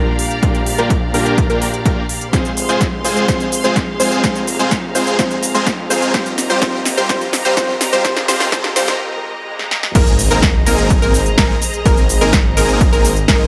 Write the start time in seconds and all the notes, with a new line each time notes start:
Already playing: A#2 G3 A#3 D4 F4 G4 A#4 D5 F5 A#5
0.19 open hi-hat
0.31 closed hi-hat
0.41 A#1 A#2 G3 A#3 D4 F4 G4 A#4, kick, closed hi-hat
0.55 closed hi-hat
0.67 open hi-hat
0.78 A#1 A#3 D4 F4 G4 A#4, closed hi-hat
0.90 kick, closed hi-hat
1.13 A#1 A#2 G3 A#3 D4 F4 G4 A#4, open hi-hat
1.26 closed hi-hat
1.38 kick, closed hi-hat
1.50 A#1 A#3 D4 F4 G4 A#4, closed hi-hat
1.62 open hi-hat
1.74 closed hi-hat
1.85 A#1 A#3 D4 F4 G4 A#4, kick, closed hi-hat
2.09 open hi-hat
2.21 closed hi-hat
2.32 F1 G#3 C4 F4 G#4 C5 F5 C6, kick, snare, closed hi-hat, riser, cabasa
2.45 closed hi-hat, cabasa
2.57 open hi-hat, cabasa
2.69 F1 G#3 C4 F4 G#4 C5, closed hi-hat, cabasa
2.81 kick, snare, closed hi-hat, cabasa
3.03 F1 G#3 C4 F4 G#4 C5, open hi-hat, cabasa
3.16 closed hi-hat, cabasa
3.27 F1 G#3 C4 F4 C5, kick, snare, closed hi-hat, cabasa
3.40 closed hi-hat, cabasa
3.52 open hi-hat, cabasa
3.64 F1 G#3 C4 F4 G#4 C5, closed hi-hat, cabasa
3.76 kick, snare, closed hi-hat, cabasa
3.99 F1 G#3 C4 F4 G#4 C5, open hi-hat, cabasa
4.12 closed hi-hat, cabasa
4.22 F1 G#3 C4 F4 G#4 C5 A#5, kick, snare, closed hi-hat, cabasa
4.36 closed hi-hat, cabasa
4.47 open hi-hat, cabasa
4.59 F1 G#3 C4 F4 G#4 C5, closed hi-hat, cabasa
4.71 kick, snare, closed hi-hat, cabasa
4.94 F1 G#3 C4 F4 G#4 C5, open hi-hat, cabasa
5.07 closed hi-hat, cabasa
5.18 F1 G#3 C4 F4 G#4 C5, kick, snare, closed hi-hat, cabasa
5.31 closed hi-hat, cabasa
5.43 open hi-hat, cabasa
5.55 F2 G#3 C4 F4 G#4 C5, closed hi-hat, cabasa
5.66 kick, snare, closed hi-hat, cabasa
5.89 F2 G#3 C4 F4 G#4 C5, open hi-hat, cabasa
6.02 closed hi-hat, cabasa
6.13 D#1 G3 C4 F4 G4 A#4 C5 D#5, kick, snare, closed hi-hat, cabasa
6.26 closed hi-hat, cabasa
6.38 snare, open hi-hat, cabasa
6.50 D#1 G3 C4 F4 G4 C5, closed hi-hat, cabasa
6.61 D#1 G3 C4 F4 G4 C5, kick, snare, closed hi-hat, cabasa
6.85 snare, open hi-hat, cabasa
6.97 D#1 G3 C4 F4 G4 C5, closed hi-hat, cabasa
7.08 G3 C4 F4 G4 C5, kick, snare, closed hi-hat, cabasa
7.21 closed hi-hat, cabasa
7.33 snare, open hi-hat, cabasa
7.45 G3 C4 F4 G4 C5, closed hi-hat, cabasa
7.56 D#1 G3 C4 F4 G4 C5, kick, snare, closed hi-hat, cabasa
7.81 snare, open hi-hat, cabasa
7.93 G3 C4 F4 G4 C5, closed hi-hat, cabasa
8.03 D#1 G3 C4 F4 G4 C5, kick, snare, closed hi-hat, cabasa
8.17 snare, closed hi-hat, cabasa
8.27 G3 C4 F4 G4 C5, snare, open hi-hat, cabasa
8.40 snare, open hi-hat, cabasa
8.51 G3 C4 F4 C5, kick, snare, closed hi-hat, cabasa
8.64 snare, closed hi-hat
8.75 G3 C4 F4 G4 C5, snare, open hi-hat, cabasa
8.88 snare, closed hi-hat, cabasa
9.00 swell
9.59 snare
9.71 snare
9.83 snare
9.95 G#1 A#3 C4 D#4 G#4 A#4 C5 D#5 A#5, kick, closed hi-hat, crash, impact, cabasa
10.07 closed hi-hat, cabasa
10.19 open hi-hat, cabasa
10.31 G#1 A#3 C4 D#4 G#4 A#4, closed hi-hat, cabasa
10.42 kick, snare, closed hi-hat, cabasa
10.66 G#1 A#3 C4 D#4 G#4 A#4, open hi-hat, cabasa
10.78 closed hi-hat, cabasa
10.90 kick, closed hi-hat, cabasa
11.02 G#1 A#3 C4 D#4 G#4 A#4, closed hi-hat, cabasa
11.14 open hi-hat, cabasa
11.26 closed hi-hat, cabasa
11.38 G#1 A#3 C4 D#4 G#4 A#4, kick, snare, closed hi-hat, cabasa
11.62 open hi-hat, cabasa
11.74 closed hi-hat, cabasa
11.85 G#1 A#3 C4 D#4 G#4 A#4, kick, closed hi-hat, cabasa
11.97 closed hi-hat, cabasa
12.09 open hi-hat, cabasa
12.21 G#1 A#3 C4 D#4 G#4 A#4, closed hi-hat, cabasa
12.33 kick, snare, closed hi-hat, cabasa
12.57 G#1 A#3 C4 D#4 G#4 A#4, open hi-hat, cabasa
12.69 closed hi-hat, cabasa
12.81 kick, closed hi-hat, cabasa
12.93 G#1 A#3 C4 D#4 G#4 A#4, closed hi-hat, cabasa
13.05 open hi-hat, cabasa
13.17 closed hi-hat, cabasa
13.28 G#1 A#3 C4 D#4 G#4 A#4, kick, snare, closed hi-hat, cabasa